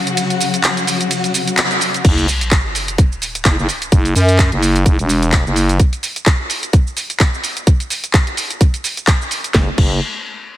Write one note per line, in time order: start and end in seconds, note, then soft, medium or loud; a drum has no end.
0.00 2.01 C#3 medium
0.00 2.01 F#3 medium
0.00 2.03 F#4 medium
0.07 closed hi-hat medium
0.07 shaker soft
0.17 closed hi-hat medium
0.17 ride medium
0.17 shaker soft
0.30 closed hi-hat soft
0.30 shaker soft
0.41 open hi-hat loud
0.41 shaker medium
0.54 closed hi-hat medium
0.54 shaker soft
0.64 clap loud
0.64 closed hi-hat medium
0.64 ride medium
0.64 shaker soft
0.77 closed hi-hat soft
0.77 shaker soft
0.87 open hi-hat medium
0.87 shaker medium
1.01 closed hi-hat medium
1.01 shaker soft
1.11 closed hi-hat medium
1.11 ride medium
1.11 shaker soft
1.24 closed hi-hat soft
1.24 shaker soft
1.34 open hi-hat loud
1.34 shaker medium
1.47 closed hi-hat medium
1.47 shaker soft
1.57 clap loud
1.57 closed hi-hat medium
1.57 ride medium
1.57 shaker soft
1.71 closed hi-hat soft
1.71 shaker soft
1.81 open hi-hat medium
1.81 shaker medium
1.94 closed hi-hat medium
1.94 shaker soft
2.05 2.26 F#1 medium
2.05 kick loud
2.05 closed hi-hat medium
2.05 crash loud
2.05 sub drop medium
2.05 shaker soft
2.18 closed hi-hat soft
2.18 shaker soft
2.28 open hi-hat loud
2.28 shaker medium
2.41 closed hi-hat medium
2.41 shaker soft
2.51 kick loud
2.51 clap loud
2.51 closed hi-hat medium
2.51 shaker soft
2.75 open hi-hat medium
2.75 shaker medium
2.88 closed hi-hat medium
2.88 shaker soft
2.98 kick loud
2.98 closed hi-hat medium
2.98 shaker soft
3.12 shaker soft
3.22 open hi-hat loud
3.22 shaker medium
3.35 closed hi-hat medium
3.35 shaker soft
3.45 3.56 F#1 medium
3.45 kick loud
3.45 clap loud
3.45 closed hi-hat medium
3.45 shaker soft
3.58 3.67 F#1 medium
3.58 shaker soft
3.69 open hi-hat medium
3.69 shaker medium
3.82 closed hi-hat medium
3.82 shaker soft
3.92 4.14 F#1 medium
3.92 kick loud
3.92 closed hi-hat medium
3.92 shaker soft
4.05 closed hi-hat soft
4.05 shaker soft
4.15 4.50 F#2 medium
4.15 open hi-hat loud
4.15 shaker medium
4.29 closed hi-hat medium
4.29 shaker soft
4.39 kick loud
4.39 clap loud
4.39 closed hi-hat medium
4.39 shaker soft
4.52 4.84 F#1 loud
4.52 closed hi-hat soft
4.62 open hi-hat medium
4.62 shaker medium
4.76 closed hi-hat medium
4.76 shaker soft
4.86 4.97 F#1 medium
4.86 kick loud
4.86 closed hi-hat medium
4.86 shaker soft
4.99 5.44 E1 loud
4.99 closed hi-hat soft
4.99 shaker soft
5.09 open hi-hat loud
5.09 shaker medium
5.23 closed hi-hat medium
5.23 shaker soft
5.32 kick loud
5.32 clap loud
5.32 closed hi-hat medium
5.32 shaker soft
5.46 5.78 F#1 medium
5.46 shaker soft
5.56 open hi-hat medium
5.56 shaker medium
5.69 closed hi-hat medium
5.69 shaker soft
5.80 kick loud
5.80 closed hi-hat medium
5.80 shaker soft
5.93 closed hi-hat soft
5.93 shaker soft
6.03 open hi-hat loud
6.03 shaker medium
6.16 closed hi-hat medium
6.16 shaker soft
6.26 kick loud
6.26 clap loud
6.26 closed hi-hat medium
6.26 shaker soft
6.50 open hi-hat medium
6.50 shaker medium
6.63 closed hi-hat medium
6.63 shaker soft
6.73 kick loud
6.73 closed hi-hat medium
6.73 shaker soft
6.87 shaker soft
6.97 open hi-hat loud
6.97 shaker medium
7.10 closed hi-hat soft
7.10 shaker soft
7.20 kick loud
7.20 clap loud
7.20 closed hi-hat medium
7.20 shaker soft
7.34 shaker soft
7.44 open hi-hat medium
7.44 shaker medium
7.57 closed hi-hat soft
7.57 shaker soft
7.67 kick loud
7.67 closed hi-hat medium
7.67 shaker soft
7.80 closed hi-hat soft
7.80 shaker soft
7.90 open hi-hat loud
7.90 shaker medium
8.04 closed hi-hat medium
8.04 shaker soft
8.14 kick loud
8.14 clap loud
8.14 closed hi-hat medium
8.14 shaker soft
8.27 closed hi-hat soft
8.37 open hi-hat medium
8.37 shaker medium
8.50 closed hi-hat soft
8.50 shaker soft
8.61 kick loud
8.61 closed hi-hat medium
8.61 shaker soft
8.74 closed hi-hat soft
8.74 shaker soft
8.84 open hi-hat loud
8.84 shaker medium
8.97 closed hi-hat soft
8.97 shaker soft
9.07 kick loud
9.07 clap loud
9.07 closed hi-hat medium
9.07 shaker soft
9.22 shaker soft
9.31 open hi-hat medium
9.31 shaker medium
9.44 closed hi-hat soft
9.44 shaker soft
9.54 9.69 F#1 medium
9.54 kick loud
9.54 snare medium
9.78 10.00 F#1 loud
9.78 kick loud
9.78 crash medium